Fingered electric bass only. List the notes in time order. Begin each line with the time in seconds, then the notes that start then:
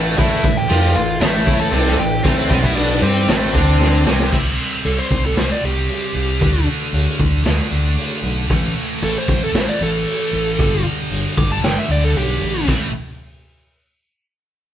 Already playing: A1
0.18 A1
0.44 A1
0.69 F2
0.95 A1
1.22 A1
1.73 C2
1.99 A1
2.25 A1
2.51 B1
3.01 G2
3.28 A1
3.55 D2
4.06 C2
4.33 C2
4.85 C2
5.11 C2
5.37 C2
5.64 C2
6.15 C2
6.41 D2
6.93 D2
7.20 D2
7.46 D2
7.71 D2
8.23 B1
8.50 A1
9.03 A1
9.28 A1
9.54 A1
9.81 A1
10.33 A1
10.59 G1
11.11 G1
11.38 G1
11.63 G1
11.89 D2
12.15 B1
12.42 A1
12.68 A1